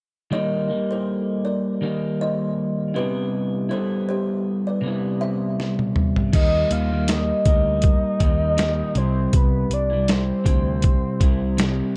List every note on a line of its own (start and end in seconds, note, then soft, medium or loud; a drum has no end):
0.31 0.69 D#3 medium
0.31 0.70 G3 medium
0.31 0.68 A#3 medium
0.31 0.67 D#4 medium
0.31 0.52 A#4 medium
0.31 0.52 D#5 medium
0.68 1.82 G3 soft
0.68 1.82 A#3 soft
0.68 1.81 D#4 soft
0.91 1.07 A4 soft
0.91 1.07 C5 medium
1.45 2.00 A#4 soft
1.45 2.00 D5 medium
1.81 2.94 D#3 soft
1.81 2.95 G3 soft
1.81 2.95 A#3 medium
1.81 2.94 D#4 medium
2.21 2.40 C5 medium
2.21 2.40 D#5 medium
2.94 3.71 C3 medium
2.94 3.72 G3 medium
2.94 3.70 B3 medium
2.94 3.68 E4 medium
2.94 3.16 G4 medium
2.94 3.15 B4 medium
3.69 4.83 G3 soft
3.69 4.83 B3 soft
3.69 4.82 E4 medium
3.69 3.91 A4 medium
3.69 3.90 C5 medium
4.09 4.28 G4 medium
4.09 4.28 C5 medium
4.67 5.03 B4 soft
4.67 5.02 D5 medium
4.81 6.32 C3 soft
4.81 6.33 G3 medium
4.86 6.34 B3 medium
4.86 6.34 E4 medium
5.21 5.41 C5 medium
5.21 5.40 E5 medium
5.60 snare soft
5.79 high tom medium
5.96 mid tom medium
6.16 floor tom medium
6.33 6.63 D#2 loud
6.33 6.91 D#3 medium
6.33 6.92 G3 medium
6.33 6.91 A#3 medium
6.33 6.90 D#4 medium
6.33 6.74 D#5 medium
6.33 kick medium
6.33 closed hi-hat medium
6.33 crash medium
6.71 7.31 D#2 medium
6.71 7.11 F5 medium
6.71 closed hi-hat medium
6.91 7.45 G3 soft
6.91 7.46 A#3 soft
6.91 7.45 D#4 soft
7.08 7.46 D#5 medium
7.08 snare loud
7.08 closed hi-hat medium
7.45 7.92 D2 medium
7.45 8.21 G3 soft
7.45 8.20 A#3 soft
7.45 8.22 D#4 soft
7.45 8.99 D#5 loud
7.45 kick medium
7.45 closed hi-hat medium
7.82 kick medium
7.82 closed hi-hat medium
8.20 8.81 D#2 medium
8.20 8.56 D#3 medium
8.20 8.57 G3 medium
8.20 8.58 A#3 medium
8.20 8.59 D#4 medium
8.20 kick medium
8.20 closed hi-hat medium
8.57 8.94 D#3 medium
8.57 8.94 G3 medium
8.57 8.96 A#3 medium
8.57 8.96 D#4 medium
8.57 snare loud
8.57 closed hi-hat medium
8.95 9.26 C2 medium
8.95 9.91 C3 medium
8.95 9.93 G3 medium
8.95 9.90 E4 medium
8.95 9.38 C5 medium
8.95 closed hi-hat medium
9.33 9.63 C2 loud
9.33 9.75 B4 medium
9.33 kick medium
9.33 closed hi-hat medium
9.70 10.31 C2 medium
9.70 10.12 D5 medium
9.70 closed hi-hat medium
9.90 10.44 G3 soft
9.90 10.45 E4 soft
10.08 11.97 C5 medium
10.08 snare loud
10.08 closed hi-hat medium
10.44 10.92 D2 medium
10.44 11.19 C3 medium
10.44 11.21 G3 medium
10.44 11.23 E4 medium
10.44 kick medium
10.44 closed hi-hat medium
10.82 kick medium
10.82 closed hi-hat medium
11.20 11.81 C2 medium
11.20 11.56 C3 medium
11.20 11.57 G3 medium
11.20 11.59 E4 medium
11.20 kick medium
11.20 closed hi-hat medium
11.57 11.97 C3 medium
11.57 11.97 G3 medium
11.57 11.97 E4 medium
11.57 snare loud
11.57 closed hi-hat medium